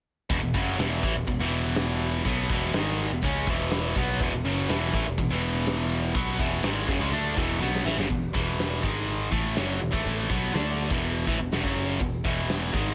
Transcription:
0.30 picked electric bass E1, distorted electric guitar E2 B2, kick, ride
0.42 picked electric bass E1, distorted electric guitar E2 B2
0.54 picked electric bass F#1, distorted electric guitar F#2 C#3 F#3, kick, ride
0.77 picked electric bass E1, distorted electric guitar E2 B2 E3, snare, ride
1.03 picked electric bass A1, distorted electric guitar A2 E3, kick, ride
1.15 picked electric bass E1, distorted electric guitar E2 B2
1.27 picked electric bass E1, distorted electric guitar E2 B2, kick, ride
1.39 picked electric bass E1, distorted electric guitar E2 B2 E3
1.52 ride
1.65 snare
1.75 snare, ride
2.00 ride
2.25 picked electric bass B1, distorted electric guitar B2 F#3 B3, kick, ride
2.49 picked electric bass E1, distorted electric guitar E2 B2 E3, kick, ride
2.73 picked electric bass G#1, distorted electric guitar G#2 D#3 G#3, snare, ride
2.88 snare
2.98 ride
3.10 picked electric bass E1, distorted electric guitar E2 B2
3.22 picked electric bass C#2, distorted electric guitar C#3 G#3 C#4, kick, ride
3.47 picked electric bass E1, distorted electric guitar E2 B2 E3, kick, ride
3.71 snare, ride
3.95 picked electric bass B1, distorted electric guitar B2 F#3 B3, kick, ride
4.20 picked electric bass E1, distorted electric guitar E2 B2, kick, ride, shaker
4.33 picked electric bass E1, distorted electric guitar E2 B2
4.44 picked electric bass F#1, distorted electric guitar F#2 C#3 F#3, ride, shaker
4.69 picked electric bass E1, distorted electric guitar E2 B2 E3, snare, ride, shaker
4.83 snare
4.93 picked electric bass A1, distorted electric guitar A2 E3, kick, ride, shaker
5.07 picked electric bass E1, distorted electric guitar E2 B2
5.18 picked electric bass E1, distorted electric guitar E2 B2, kick, ride, shaker
5.31 picked electric bass E1, distorted electric guitar E2 B2 E3
5.42 ride, shaker
5.55 snare
5.66 snare, ride, shaker
5.90 ride, shaker
6.14 picked electric bass B1, distorted electric guitar B2 F#3 B3, kick, ride, shaker
6.38 picked electric bass E1, distorted electric guitar E2 B2 E3, kick, ride
6.63 picked electric bass G#1, distorted electric guitar G#2 D#3 G#3, snare, ride, shaker
6.87 picked electric bass F#1, distorted electric guitar F#2 C#3, kick, ride, shaker
7.00 picked electric bass C#2, distorted electric guitar C#3 G#3
7.12 picked electric bass D2, distorted electric guitar D3 A3 D4, ride, shaker
7.35 picked electric bass E1, distorted electric guitar E2 B2 E3, kick, ride, shaker
7.51 snare
7.60 picked electric bass B1, distorted electric guitar B2 F#3 B3, snare, shaker
7.75 snare
7.84 picked electric bass A1, distorted electric guitar A2 E3, snare
7.97 picked electric bass F#1, distorted electric guitar F#2 C#3, snare
8.09 picked electric bass E1, distorted electric guitar E2 B2, kick, open hi-hat
8.33 picked electric bass E1, distorted electric guitar E2 B2 E3, kick, open hi-hat
8.59 snare, open hi-hat
8.73 snare
8.83 picked electric bass G#1, distorted electric guitar G#2 D#3 G#3, kick, open hi-hat
9.08 open hi-hat
9.31 picked electric bass A1, distorted electric guitar A2 E3 A3, kick, open hi-hat
9.56 picked electric bass F#1, distorted electric guitar F#2 C#3 F#3, snare, open hi-hat
9.81 picked electric bass E1, distorted electric guitar E2 B2, open hi-hat
9.91 picked electric bass A1, distorted electric guitar A2 E3 A3, kick
10.05 kick, open hi-hat
10.29 picked electric bass B1, distorted electric guitar B2 F#3 B3, kick, open hi-hat
10.53 picked electric bass D2, distorted electric guitar D3 A3 D4, snare, open hi-hat
10.79 open hi-hat
10.90 picked electric bass E1, distorted electric guitar E2 B2 E3, kick
11.03 open hi-hat
11.27 picked electric bass A1, distorted electric guitar A2 E3, kick, open hi-hat
11.40 picked electric bass E1, distorted electric guitar E2 B2
11.52 picked electric bass E1, distorted electric guitar E2 B2, snare, open hi-hat
11.63 picked electric bass F#1, distorted electric guitar F#2 C#3 F#3, kick
11.76 open hi-hat
12.00 picked electric bass E1, distorted electric guitar E2 B2, kick, open hi-hat
12.24 picked electric bass E1, distorted electric guitar E2 B2 E3, kick, open hi-hat
12.49 snare, open hi-hat
12.63 snare
12.73 picked electric bass G#1, distorted electric guitar G#2 D#3 G#3, kick, open hi-hat

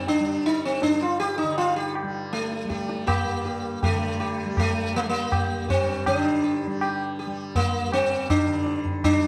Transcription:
Already playing: tanpura G2 D3 G3
0.07 sitar D4, tabla tin
0.20 tanpura G3
0.46 sitar D#4
0.65 sitar C4
0.82 tanpura G2, sitar D4, tabla te
1.02 sitar F4
1.20 sitar G4, tabla te
1.38 sitar D#4
1.43 tanpura D3
1.58 sitar F4, tabla tin
1.76 sitar G4
1.95 tabla na
2.03 tanpura G3
2.33 sitar A3, tabla te
2.52 tabla te
2.65 tanpura G3
2.70 sitar G4, tabla ke
2.89 tabla te
3.07 sitar A#3 G4, tabla na, tabla ge
3.25 tanpura G2
3.45 sitar G4
3.83 tanpura D3, sitar A3 G4, tabla tin, tabla ge
4.20 sitar G4, tabla na
4.45 tanpura G3
4.57 sitar A3 G4, tabla na, tabla ge
4.95 sitar A#3 G4, tabla te
5.02 tanpura G3, sitar A3
5.10 sitar A#3
5.32 sitar G4, tabla na, tabla ge
5.65 tanpura G2, sitar G4
5.69 sitar C4, tabla ge
6.06 tanpura D3, sitar D4, tabla na, tabla ge
6.44 sitar G4
6.67 tanpura G3
6.81 sitar G4, tabla na
7.19 sitar G4
7.27 tanpura G3
7.55 sitar A#3, tabla tin, tabla ge
7.86 tanpura G2
7.92 sitar C4, tabla na
8.30 sitar D4, tabla na, tabla ge
8.46 tanpura D3
8.66 tabla te
8.85 tabla ge
9.04 tanpura G3, sitar D4, tabla na, tabla ge

